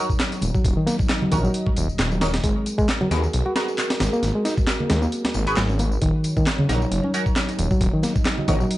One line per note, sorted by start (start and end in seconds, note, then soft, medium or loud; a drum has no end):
0.00 2.40 F#3 medium
0.00 2.40 D#4 medium
0.00 0.63 C#5 medium
0.10 kick medium
0.10 tambourine soft
0.20 snare loud
0.20 clap loud
0.20 closed hi-hat medium
0.20 tambourine soft
0.32 closed hi-hat soft
0.32 tambourine soft
0.42 0.51 D#1 loud
0.42 closed hi-hat medium
0.42 tambourine medium
0.42 high conga medium
0.55 0.76 F#3 medium
0.55 kick medium
0.55 tambourine soft
0.65 0.73 D#1 loud
0.65 2.42 D#5 medium
0.65 kick loud
0.65 closed hi-hat medium
0.65 tambourine soft
0.77 0.87 D#3 medium
0.87 0.96 A#3 loud
0.87 snare soft
0.87 closed hi-hat medium
0.87 tambourine medium
0.99 kick medium
0.99 tambourine soft
0.99 high conga medium
1.09 snare loud
1.09 clap loud
1.09 closed hi-hat medium
1.09 tambourine soft
1.22 1.31 F#3 medium
1.22 low conga medium
1.32 1.48 A#1 loud
1.32 1.37 D#3 loud
1.32 1.47 C#4 medium
1.32 1.47 D#4 medium
1.32 1.47 F#4 medium
1.32 1.47 A#4 loud
1.32 kick medium
1.32 closed hi-hat medium
1.32 tambourine medium
1.44 1.88 F#3 loud
1.44 tambourine soft
1.54 closed hi-hat medium
1.54 tambourine soft
1.66 kick medium
1.66 high conga medium
1.77 1.89 D#1 medium
1.77 closed hi-hat medium
1.77 tambourine medium
1.89 1.97 D#1 soft
1.89 tambourine soft
1.99 2.39 D#1 medium
1.99 snare loud
1.99 clap loud
1.99 closed hi-hat medium
1.99 tambourine soft
2.12 2.20 F#3 medium
2.12 tambourine soft
2.21 2.26 D#3 medium
2.21 2.31 C#4 medium
2.21 2.31 D#4 medium
2.21 2.31 F#4 medium
2.21 2.31 A#4 loud
2.21 snare loud
2.21 closed hi-hat medium
2.21 tambourine medium
2.21 high conga medium
2.34 snare loud
2.34 closed hi-hat medium
2.34 tambourine soft
2.44 2.52 G#1 medium
2.44 2.77 G#3 loud
2.44 5.98 F#4 medium
2.44 5.98 G#4 medium
2.44 5.98 A#4 medium
2.44 kick loud
2.44 closed hi-hat medium
2.44 tambourine soft
2.66 closed hi-hat medium
2.66 tambourine medium
2.78 2.88 G#3 loud
2.78 kick loud
2.78 tambourine soft
2.78 high conga medium
2.89 snare loud
2.89 clap loud
2.89 closed hi-hat medium
2.89 tambourine soft
3.01 3.08 F#3 loud
3.01 low conga medium
3.11 3.27 D#2 medium
3.11 3.20 B3 medium
3.11 3.20 F#4 medium
3.11 3.45 G#4 medium
3.11 3.20 G#4 medium
3.11 3.20 A#4 medium
3.11 snare soft
3.11 closed hi-hat medium
3.11 tambourine medium
3.23 tambourine soft
3.33 3.42 B1 medium
3.33 closed hi-hat medium
3.33 tambourine soft
3.46 3.53 F#4 loud
3.46 high conga medium
3.56 3.65 B3 medium
3.56 3.65 F#4 medium
3.56 3.65 G#4 medium
3.56 3.65 A#4 medium
3.56 snare medium
3.56 closed hi-hat medium
3.56 tambourine medium
3.68 tambourine soft
3.78 snare soft
3.78 clap loud
3.78 closed hi-hat medium
3.78 tambourine soft
3.90 snare loud
3.90 closed hi-hat medium
3.90 tambourine soft
4.00 4.09 G#1 loud
4.00 snare loud
4.00 closed hi-hat medium
4.00 tambourine medium
4.00 high conga medium
4.13 4.34 A#3 loud
4.13 tambourine soft
4.23 4.31 G#1 loud
4.23 snare soft
4.23 closed hi-hat medium
4.23 tambourine soft
4.35 4.45 G#3 medium
4.45 4.54 D#4 loud
4.45 snare soft
4.45 closed hi-hat medium
4.45 tambourine medium
4.57 kick loud
4.57 tambourine soft
4.57 high conga medium
4.67 snare loud
4.67 clap loud
4.67 closed hi-hat medium
4.67 tambourine soft
4.80 4.89 A#3 medium
4.80 low conga medium
4.90 5.06 D#2 medium
4.90 4.95 G#3 loud
4.90 snare loud
4.90 closed hi-hat medium
4.90 tambourine medium
5.02 5.46 A#3 medium
5.02 tambourine soft
5.12 closed hi-hat medium
5.12 tambourine soft
5.25 snare loud
5.25 closed hi-hat medium
5.25 high conga medium
5.34 5.46 G#1 medium
5.34 tambourine medium
5.47 5.55 G#1 soft
5.47 5.60 B3 medium
5.47 5.60 F#4 medium
5.47 5.60 G#4 medium
5.47 5.60 B4 medium
5.47 closed hi-hat medium
5.47 tambourine soft
5.57 5.97 G#1 medium
5.57 5.68 F#3 medium
5.57 snare loud
5.57 clap loud
5.57 closed hi-hat medium
5.57 tambourine soft
5.69 5.78 C#4 medium
5.69 tambourine soft
5.79 5.85 A#3 medium
5.79 closed hi-hat medium
5.79 tambourine medium
5.79 high conga medium
5.92 tambourine soft
6.02 6.10 D#1 loud
6.02 6.35 D#3 loud
6.02 8.78 F#3 medium
6.02 8.78 D#4 medium
6.02 7.79 C#5 medium
6.02 kick loud
6.02 closed hi-hat medium
6.02 tambourine soft
6.24 closed hi-hat medium
6.24 tambourine medium
6.36 6.46 D#3 loud
6.36 kick loud
6.36 tambourine soft
6.36 high conga medium
6.47 snare loud
6.47 clap loud
6.47 closed hi-hat medium
6.47 tambourine soft
6.58 6.66 C#3 medium
6.58 low conga medium
6.69 6.85 A#1 medium
6.69 6.78 C#4 medium
6.69 6.78 D#4 medium
6.69 7.03 D#4 medium
6.69 6.78 F#4 medium
6.69 6.78 A#4 medium
6.69 snare soft
6.69 closed hi-hat medium
6.69 tambourine medium
6.82 tambourine soft
6.91 7.00 F#1 medium
6.91 closed hi-hat medium
6.91 tambourine soft
7.03 7.11 C#4 medium
7.03 high conga medium
7.14 7.23 C#4 medium
7.14 7.23 D#4 medium
7.14 7.23 F#4 medium
7.14 7.23 A#4 medium
7.14 closed hi-hat medium
7.14 tambourine medium
7.26 kick medium
7.26 tambourine soft
7.36 snare loud
7.36 clap loud
7.36 closed hi-hat medium
7.36 tambourine soft
7.49 closed hi-hat soft
7.49 tambourine soft
7.59 7.67 D#1 loud
7.59 closed hi-hat medium
7.59 tambourine medium
7.59 high conga medium
7.71 7.92 F#3 medium
7.71 kick medium
7.71 tambourine soft
7.80 7.90 D#1 loud
7.80 8.78 D#5 medium
7.80 kick loud
7.80 closed hi-hat medium
7.80 tambourine soft
7.94 8.03 D#3 loud
8.03 8.12 A#3 medium
8.03 snare soft
8.03 closed hi-hat medium
8.03 tambourine medium
8.15 kick medium
8.15 tambourine soft
8.15 high conga medium
8.25 snare loud
8.25 clap loud
8.25 closed hi-hat medium
8.25 tambourine soft
8.38 8.47 F#3 medium
8.38 low conga medium
8.48 8.64 A#1 medium
8.48 8.53 D#3 loud
8.48 8.63 C#4 medium
8.48 8.63 D#4 medium
8.48 8.63 F#4 medium
8.48 8.63 A#4 medium
8.48 kick medium
8.48 closed hi-hat medium
8.48 tambourine medium
8.60 8.78 F#3 loud
8.60 tambourine soft
8.71 closed hi-hat medium
8.71 tambourine soft